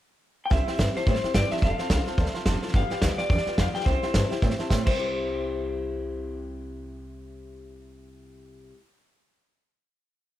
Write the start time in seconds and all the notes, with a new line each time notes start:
0.46 G5
0.50 C2 C3 G3 C4 E4 G4 C5 E5 G5, kick, snare
0.66 C4 E4 G4 C5 E5 G5, muted upright bass stroke, snare
0.77 G2 C3 G3 C4 E4 G4 C5 G5, kick, snare, hi-hat pedal
0.94 C4 E4 G4 C5 E5 A5, muted upright bass stroke, snare
1.05 A2 G3 C4 E4 G4 C5 E5 G5, kick, snare
1.15 snare
1.22 C4 E4 G4 C5 E5 G5, muted upright bass stroke, snare
1.34 G2 C3 G3 C4 E4 G4 C5 D5 E5 G5, kick, snare, hi-hat pedal
1.50 C4 E4 G4 C5 E5 A5, muted upright bass stroke, snare
1.57 snare
1.61 F1 F3 C4 F4 A4 C5 F5 A5, kick, snare
1.78 C4 F4 A4 C5 F5 A5, muted upright bass stroke, snare
1.90 C2 F3 C4 F4 A4 C5 F5 G5, kick, snare, hi-hat pedal
2.06 C4 F4 A4 C5 F5 A5, snare
2.18 D2 F3 C4 F4 A4 C5 F5 A5, kick, snare
2.26 E5, snare
2.34 C4 F4 A4 C5 F5 A5, muted upright bass stroke, snare
2.46 F1 F3 C4 F4 A4 C5 F5 A5, kick, snare, hi-hat pedal
2.62 C4 F4 A4 C5 F5 A5, muted upright bass stroke, snare
2.68 snare
2.74 G1 G2 D3 F3 B3 F4 G4 B4 D5 F5 G5, kick, snare
2.90 F3 B3 F4 G4 B4 D5 G5, muted upright bass stroke, snare
3.02 D2 G2 D3 F3 B3 F4 G4 B4 D5 G5, kick, snare, hi-hat pedal
3.18 F3 B3 F4 G4 B4 D5 G5, muted upright bass stroke, snare
3.29 E2 F3 B3 F4 G4 B4 D5 G5, kick, snare
3.38 snare
3.46 F3 B3 F4 G4 B4 D5 G5, muted upright bass stroke, snare
3.58 F2 G2 D3 F3 B3 F4 G4 B4 D5 F5 G5, kick, snare, hi-hat pedal
3.74 F3 B3 F4 G4 B4 D5 G5, muted upright bass stroke, snare
3.80 snare
3.85 C2 C3 G3 C4 E4 G4 C5 E5 G5, kick, snare
4.02 C4 E4 G4 C5 E5 G5, muted upright bass stroke, snare
4.14 G2 C3 G3 C4 E4 G4 E5 A5, kick, snare, hi-hat pedal
4.30 C4 E4 G4 C5 E5 G5, muted upright bass stroke, snare
4.42 A2 G3 C4 E4 G4 C5 E5 G5, kick, snare
4.50 snare
4.58 C4 E4 G4 C5 E5 A5, muted upright bass stroke, snare
4.70 A2 C3 G3 C4 E4 G4 C5 E5 G5, kick, snare, hi-hat pedal
4.83 C2 C3 C5, kick, crash
4.87 G3 E5 G5
4.93 C4 E4
5.00 G4